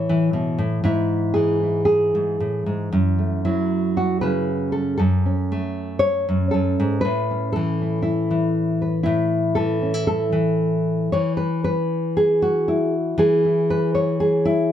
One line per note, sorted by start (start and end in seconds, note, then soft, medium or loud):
0.00 0.57 A2 medium
0.00 0.09 E3 medium
0.00 0.85 E4 soft
0.00 0.60 C#5 loud
0.09 0.33 E3 medium
0.33 0.59 B2 medium
0.58 0.83 A2 medium
0.84 2.13 G#2 medium
0.84 1.62 E4 medium
1.34 3.44 E3 soft
1.34 1.84 G#4 medium
1.63 2.95 E4 soft
1.85 2.92 G#4 medium
2.15 2.40 G#2 soft
2.40 2.66 A2 soft
2.66 2.92 G#2 medium
2.92 4.98 F#2 medium
3.19 5.25 A3 soft
3.45 4.97 F#3 soft
3.45 4.48 E4 medium
3.97 4.21 F#4 medium
4.21 4.97 C#3 medium
4.21 4.72 B4 medium
4.72 4.96 A4 medium
4.97 6.27 F#2 medium
4.97 5.99 A4 medium
5.26 7.04 C#4 soft
5.52 7.04 A3 soft
5.99 6.51 C#5 loud
6.29 6.53 F#2 medium
6.51 6.79 F#2 medium
6.51 7.00 A4 medium
6.80 7.04 G#2 medium
7.01 7.52 B4 medium
7.05 9.03 A2 medium
7.31 9.82 C#4 soft
7.52 8.29 E3 medium
7.52 8.54 A4 medium
7.82 8.02 E4 soft
8.02 9.02 E4 medium
8.31 9.56 E3 soft
8.82 9.03 B4 soft
9.03 11.09 A2 medium
9.03 9.80 E4 medium
9.55 10.31 E3 medium
9.55 10.06 A4 medium
9.82 9.94 C#4 soft
9.94 11.12 E4 soft
10.07 11.12 A4 medium
10.32 11.09 E3 medium
11.12 13.16 E3 medium
11.12 11.37 C#5 medium
11.37 11.63 B4 medium
11.64 12.42 B4 medium
12.17 12.93 G#4 medium
12.42 13.18 F#4 medium
12.68 13.44 E4 medium
13.18 14.72 E3 medium
13.18 14.19 G#4 loud
13.45 14.44 E4 soft
13.70 13.94 B4 medium
13.95 14.70 C#5 medium
14.20 14.72 G#4 medium
14.45 14.72 E4 medium